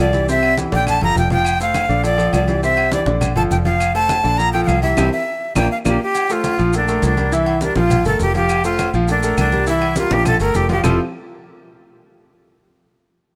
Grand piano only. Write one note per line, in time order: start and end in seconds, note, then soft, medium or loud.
0.13 0.25 E3 medium
0.13 0.26 E4 medium
0.13 0.26 G4 medium
0.28 0.52 C3 medium
0.28 0.53 C4 loud
0.28 0.53 C5 medium
0.57 0.69 E3 medium
0.57 0.69 E4 medium
0.57 0.69 G4 medium
0.72 0.96 D3 medium
0.72 0.96 D4 medium
0.72 0.96 D5 medium
1.02 1.26 F3 medium
1.02 1.26 F4 medium
1.02 1.26 A4 medium
1.31 1.55 F3 medium
1.31 1.55 F4 medium
1.31 1.56 F5 medium
1.60 1.84 A3 medium
1.60 1.84 A4 medium
1.60 1.85 C5 medium
1.89 2.01 D3 medium
1.89 2.02 D4 medium
1.89 2.01 D5 medium
2.04 2.16 F3 medium
2.04 2.16 F4 medium
2.04 2.16 A4 medium
2.17 2.42 F3 medium
2.17 2.42 F4 medium
2.17 2.43 A4 medium
2.47 2.60 E3 medium
2.47 2.60 E4 medium
2.47 2.60 G4 medium
2.63 2.87 C3 medium
2.63 2.87 C4 loud
2.63 2.87 C5 medium
2.92 3.04 E3 medium
2.92 3.04 E4 medium
2.92 3.05 G4 medium
3.07 3.31 D3 medium
3.07 3.31 D4 medium
3.07 3.31 D5 medium
3.36 3.60 F3 medium
3.36 3.60 F4 medium
3.36 3.61 A4 medium
3.65 3.89 F3 medium
3.65 3.89 F4 medium
3.65 3.90 F5 medium
3.95 4.19 A3 medium
3.95 4.19 A4 medium
3.95 4.19 C5 medium
4.24 4.36 D3 medium
4.24 4.36 D4 medium
4.24 4.36 D5 medium
4.39 4.51 F3 medium
4.39 4.51 F4 medium
4.39 4.51 A4 medium
4.54 4.78 F3 medium
4.54 4.78 F4 medium
4.54 4.78 A4 medium
4.83 4.95 E3 medium
4.83 4.95 E4 medium
4.83 4.95 G4 medium
4.98 5.07 C4 loud
4.98 5.07 E4 loud
4.98 5.07 G4 loud
5.56 5.65 A#3 loud
5.56 5.66 D4 medium
5.56 5.66 F4 medium
5.85 5.95 A#3 medium
5.85 5.95 D4 medium
5.85 5.95 F4 loud
6.30 6.54 A3 medium
6.30 6.54 A4 medium
6.30 6.54 C5 medium
6.58 6.71 F3 medium
6.58 6.71 F4 loud
6.58 6.71 F5 medium
6.74 6.86 A3 medium
6.74 6.86 A4 medium
6.74 6.86 A#4 medium
6.89 7.13 A3 loud
6.89 7.13 A4 medium
6.89 7.13 A#4 medium
7.17 7.30 G3 medium
7.17 7.30 G4 medium
7.17 7.30 A#4 medium
7.32 7.56 E3 medium
7.32 7.56 E4 medium
7.32 7.57 E5 medium
7.62 7.74 G3 medium
7.62 7.74 G4 medium
7.62 7.74 A#4 medium
7.77 8.01 F3 medium
7.77 8.01 F4 loud
7.77 8.01 F5 loud
8.06 8.30 A3 medium
8.06 8.30 A4 medium
8.06 8.30 A#4 medium
8.35 8.59 F3 medium
8.35 8.59 F4 medium
8.35 8.59 F5 medium
8.64 8.88 A3 medium
8.64 8.89 A4 medium
8.64 8.89 C5 medium
8.94 9.06 F3 loud
8.94 9.06 F4 loud
8.94 9.06 F5 medium
9.09 9.21 A3 medium
9.09 9.21 A4 medium
9.09 9.21 A#4 medium
9.24 9.48 A3 medium
9.24 9.48 A4 medium
9.24 9.48 A#4 loud
9.53 9.65 G3 medium
9.53 9.65 G4 medium
9.53 9.65 A#4 medium
9.67 9.91 E3 medium
9.67 9.91 E4 loud
9.67 9.91 E5 medium
9.97 10.09 G3 medium
9.97 10.09 G4 medium
9.97 10.09 A#4 medium
10.11 10.35 F3 medium
10.11 10.35 F4 medium
10.11 10.36 F5 medium
10.41 10.65 A3 medium
10.41 10.65 A4 medium
10.41 10.65 A#4 medium
10.69 10.82 F3 medium
10.69 10.82 F4 medium
10.69 10.82 F5 medium
10.84 10.98 F3 loud
10.84 10.98 C4 medium
10.84 10.98 E4 loud
10.84 10.98 F4 medium
10.84 10.98 G4 medium
10.84 10.98 A4 loud